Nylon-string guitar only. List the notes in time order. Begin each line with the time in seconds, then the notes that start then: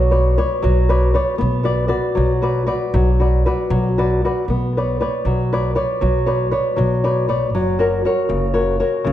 Already playing: F#3
0.11 B4 C#5 D5
0.38 B4 C#5 D5
0.62 F#3
0.89 B4 C#5 D5
1.14 B4 C#5 D5
1.38 B3
1.63 F#4 B4 D5
1.88 F#4 B4 D5
2.15 F#3
2.42 F#4 B4 D5
2.67 F#4 B4 D5
2.94 F#3
3.20 F#4 B4 D5
3.46 F#4 B4 D5
3.70 F#3
3.98 F#4 B4 D5
4.25 F#4 B4 D5
4.50 B3
4.77 B4 C#5 D5
5.01 B4 C#5 D5
5.26 F#3
5.53 B4 C#5 D5
5.75 B4 C#5 D5
6.01 F#3
6.26 B4 C#5 D5
6.51 B4 C#5 D5
6.76 F#3
7.04 B4 C#5 D5
7.28 B4 C#5 D5
7.55 F#3
7.79 F#4 A#4 C#5
8.05 F#4 A#4 C#5
8.29 C#3
8.54 F#4 A#4 C#5
8.80 F#4 A#4 C#5
9.05 C#3